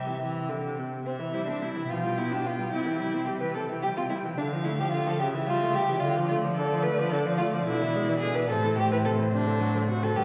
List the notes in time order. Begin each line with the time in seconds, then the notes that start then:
Already playing: C3 G4 E5
0.07 E3
0.21 E3
0.49 D3
0.78 C3
1.05 C3 C4 E5
1.20 E3
1.33 G3 E4
1.47 C4 D4
1.62 G3 E4
1.76 E3
1.89 B2 F3 F4 G5
2.04 G3
2.18 B3 E4
2.31 D4 G4
2.46 B3 F4
2.59 G3
2.73 C3 E4
2.86 E3
2.99 G3 E4
3.14 C4
3.26 G3 G4
3.41 E3 B4
3.55 C3 A4
3.70 E3
3.82 G3 G4
3.97 C4 F4
4.09 G3 E4
4.25 E3
4.38 D3 D4 F5
4.53 F3
4.64 A3 E4
4.80 F3 G4
4.91 D3 F4
5.07 F3 A4
5.19 C#3 G4 E5
5.34 E3
5.47 G3 F4
5.62 A3
5.75 G3 G4
5.89 E3
6.00 D3 F4 D5
6.18 F3
6.28 A3 F4
6.45 F3
6.55 D3 A4
6.72 F3
6.82 A3 B4
6.98 F3
7.10 D3 A4
7.26 F3
7.38 A3 F4
7.54 F3
7.64 B2 D3 E4
7.82 E3
7.95 G#3
8.10 E3
8.20 D3 G#4
8.35 E3 B4
8.50 A2 C3 A4 C5
8.64 E3
8.78 A3 G4
8.92 E3 B4
9.05 C3 A4
9.19 E3
9.33 C3 D4
9.47 D3
9.61 F#3
9.75 D3
9.88 C3 F#4
10.02 D3 A4
10.15 G2 D3 G4 B4